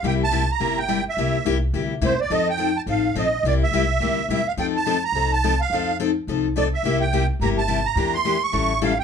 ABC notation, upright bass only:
X:1
M:4/4
L:1/8
Q:"Swing" 1/4=212
K:Cmix
V:1 name="Upright bass" clef=bass
C,,4 G,,,4 | C,,2 C,,2 D,,2 E,,2 | F,,4 A,,,2 B,,,2 | C,,2 C,,2 D,,2 E,,2 |
F,,4 C,,4 | F,,4 C,,4 | C,,4 G,,,4 | E,,4 A,,,4 |]